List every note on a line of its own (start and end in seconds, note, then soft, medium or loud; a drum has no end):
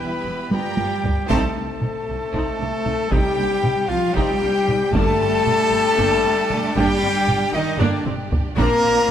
0.00 0.47 E3 medium
0.00 1.29 G3 medium
0.00 0.48 B3 medium
0.00 0.51 B3 medium
0.00 0.47 E4 medium
0.00 0.48 E4 medium
0.00 1.27 G4 medium
0.00 0.50 B4 medium
0.00 0.51 B4 medium
0.00 0.52 E5 medium
0.00 0.52 B5 loud
0.24 0.33 E1 medium
0.24 0.33 E2 medium
0.24 0.32 E3 medium
0.49 0.59 G1 medium
0.49 0.59 G2 medium
0.49 1.00 F3 medium
0.49 1.25 G3 medium
0.49 1.12 G3 medium
0.49 1.02 A#3 medium
0.49 0.76 B3 medium
0.49 1.29 F4 medium
0.49 1.09 F4 medium
0.49 1.25 G4 loud
0.49 1.26 G4 medium
0.49 1.03 A#4 medium
0.49 1.28 D5 medium
0.49 1.26 G5 medium
0.49 1.04 A#5 medium
0.49 taiko high medium
0.77 0.85 G1 medium
0.77 0.86 G2 medium
0.77 0.86 F3 medium
0.77 taiko high medium
1.03 1.13 G1 medium
1.03 1.12 G2 medium
1.03 1.11 G3 medium
1.03 taiko low medium
1.28 1.54 C2 loud
1.28 3.07 A3 loud
1.28 3.07 A3 medium
1.28 1.53 C4 loud
1.28 4.88 C4 loud
1.28 4.88 D#4 loud
1.28 1.53 D#4 loud
1.28 4.88 G4 loud
1.28 3.13 A4 loud
1.28 3.07 A4 loud
1.28 4.88 C5 loud
1.28 3.07 A5 loud
1.28 3.08 A5 loud
1.28 taiko loud
1.55 1.64 C2 medium
1.55 1.63 A#3 medium
1.55 1.63 D4 medium
1.81 1.89 C2 medium
1.81 1.89 C4 medium
1.81 1.89 D#4 medium
1.81 taiko mid medium
2.07 2.16 C2 medium
2.07 2.15 G3 medium
2.07 2.15 C4 medium
2.33 2.41 C2 medium
2.33 2.57 C4 medium
2.33 2.57 D#4 medium
2.33 taiko medium
2.59 2.67 C2 medium
2.59 2.67 A#3 medium
2.59 2.67 D4 medium
2.84 2.93 C2 medium
2.84 2.92 C4 medium
2.84 2.92 D#4 medium
2.84 taiko mid medium
3.10 3.19 C2 loud
3.10 3.87 G3 medium
3.10 3.87 G3 loud
3.10 3.35 C4 medium
3.10 3.35 D#4 medium
3.10 3.88 G4 loud
3.10 3.90 G4 loud
3.10 3.87 G5 loud
3.10 3.90 G5 loud
3.10 3.88 G5 loud
3.10 taiko loud
3.36 3.44 C2 medium
3.36 3.45 A#3 medium
3.36 3.45 D4 medium
3.62 3.71 C2 medium
3.62 3.70 C4 medium
3.62 3.70 D#4 medium
3.62 taiko mid medium
3.88 3.97 C2 medium
3.88 4.14 F3 medium
3.88 4.15 F3 medium
3.88 3.97 G3 medium
3.88 3.98 C4 medium
3.88 4.16 F4 medium
3.88 4.15 F4 loud
3.88 4.14 F5 loud
3.88 4.17 F5 medium
3.88 4.15 F5 medium
4.14 4.23 C2 loud
4.14 4.92 G3 loud
4.14 4.39 C4 loud
4.14 4.39 D#4 loud
4.14 4.76 G4 loud
4.14 4.93 G4 loud
4.14 4.93 G5 loud
4.14 4.92 G5 loud
4.14 4.94 G5 loud
4.14 taiko medium
4.41 4.49 C2 medium
4.41 4.49 A#3 medium
4.41 4.49 D4 medium
4.67 4.75 C2 medium
4.67 4.75 C4 medium
4.67 4.75 D#4 medium
4.67 taiko mid medium
4.92 5.01 G1 loud
4.92 5.67 G2 loud
4.92 8.56 G3 loud
4.92 6.71 G3 loud
4.92 6.71 A3 loud
4.92 5.17 A#3 loud
4.92 8.56 D4 loud
4.92 5.17 D4 loud
4.92 8.52 G4 loud
4.92 6.71 A4 loud
4.92 6.59 A4 loud
4.92 8.55 D5 loud
4.92 6.74 A5 loud
4.92 6.46 A5 loud
4.92 6.72 A5 loud
4.92 taiko loud
5.19 5.27 G1 medium
5.19 5.27 A3 medium
5.19 5.27 C4 medium
5.45 5.53 G1 medium
5.45 5.54 A#3 medium
5.45 5.54 D4 medium
5.45 taiko mid medium
5.71 5.79 G1 medium
5.71 5.79 G3 medium
5.71 5.79 A#3 medium
5.96 6.06 G1 loud
5.96 6.20 A#3 medium
5.96 6.21 D4 loud
5.96 taiko medium
6.23 6.32 G1 medium
6.23 6.31 A3 medium
6.23 6.31 C4 medium
6.50 6.58 G1 medium
6.50 6.59 A#3 medium
6.50 6.59 D4 medium
6.50 taiko mid medium
6.74 6.84 G1 loud
6.74 7.52 G3 loud
6.74 7.51 G3 loud
6.74 6.99 A#3 loud
6.74 7.00 D4 loud
6.74 7.51 G4 loud
6.74 7.53 G5 loud
6.74 7.56 G5 loud
6.74 7.52 G5 loud
6.74 taiko loud
7.01 7.10 G1 medium
7.01 7.09 A3 medium
7.01 7.09 C4 medium
7.27 7.35 G1 medium
7.27 7.35 A#3 medium
7.27 7.36 D4 medium
7.27 taiko mid medium
7.52 7.61 G1 medium
7.52 7.78 D#3 loud
7.52 7.61 G3 medium
7.52 7.62 A#3 medium
7.52 7.81 D#4 loud
7.52 7.79 D#4 loud
7.52 7.79 D#5 loud
7.79 7.87 G1 loud
7.79 8.04 D3 medium
7.79 8.05 D3 medium
7.79 8.03 A#3 loud
7.79 8.05 D4 medium
7.79 8.03 D4 loud
7.79 8.06 D4 loud
7.79 8.05 D5 medium
7.79 taiko low-mid loud
8.05 8.13 G1 medium
8.05 8.13 A3 medium
8.05 8.13 C4 loud
8.05 taiko mid loud
8.30 8.38 G1 medium
8.30 8.39 A#3 medium
8.30 8.39 D4 medium
8.30 taiko low loud
8.56 8.64 A#1 loud
8.56 9.11 A#3 loud
8.56 8.80 C4 loud
8.56 9.11 C4 loud
8.56 8.80 D4 loud
8.56 9.11 F4 loud
8.56 9.11 A#4 loud
8.56 9.11 D5 loud
8.56 9.11 A#5 loud
8.56 taiko loud
8.81 8.90 A#1 medium
8.81 8.90 A#3 medium
8.81 8.89 C4 medium
9.08 9.11 A#1 medium
9.08 9.11 D4 medium